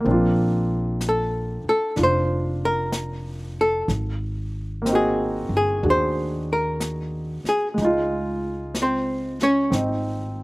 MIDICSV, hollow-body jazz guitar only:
0, 0, Header, 1, 2, 480
1, 0, Start_track
1, 0, Tempo, 960000
1, 27, Time_signature, 4, 2, 24, 8
1, 1947, Tempo, 970874
1, 5180, End_track
2, 0, Start_track
2, 0, Title_t, "Hollow-body jazz guitar"
2, 0, Program_c, 0, 26
2, 543, Note_on_c, 0, 69, 69
2, 830, Note_off_c, 0, 69, 0
2, 846, Note_on_c, 0, 69, 78
2, 991, Note_off_c, 0, 69, 0
2, 1017, Note_on_c, 0, 72, 84
2, 1306, Note_off_c, 0, 72, 0
2, 1326, Note_on_c, 0, 70, 79
2, 1775, Note_off_c, 0, 70, 0
2, 1805, Note_on_c, 0, 69, 75
2, 1953, Note_off_c, 0, 69, 0
2, 2470, Note_on_c, 0, 68, 69
2, 2755, Note_off_c, 0, 68, 0
2, 2774, Note_on_c, 0, 68, 77
2, 2917, Note_off_c, 0, 68, 0
2, 2940, Note_on_c, 0, 72, 80
2, 3230, Note_off_c, 0, 72, 0
2, 3249, Note_on_c, 0, 70, 73
2, 3699, Note_off_c, 0, 70, 0
2, 3723, Note_on_c, 0, 68, 72
2, 3816, Note_off_c, 0, 68, 0
2, 4382, Note_on_c, 0, 60, 55
2, 4385, Note_on_c, 0, 72, 61
2, 4672, Note_off_c, 0, 60, 0
2, 4672, Note_off_c, 0, 72, 0
2, 4684, Note_on_c, 0, 61, 83
2, 4686, Note_on_c, 0, 73, 75
2, 4832, Note_off_c, 0, 73, 0
2, 4833, Note_off_c, 0, 61, 0
2, 5180, End_track
0, 0, End_of_file